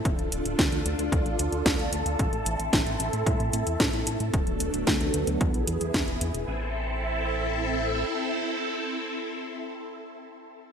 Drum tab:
HH |xxxxxxxxxxxxxxxx|xxxxxxxxxxxxxxxx|xxxxxxxxxxxxxxxx|----------------|
SD |----o-------o---|----o-------o---|----o-------o---|----------------|
BD |o---o---o---o---|o---o---o---o---|o---o---o---o---|----------------|

HH |----------------|
SD |----------------|
BD |----------------|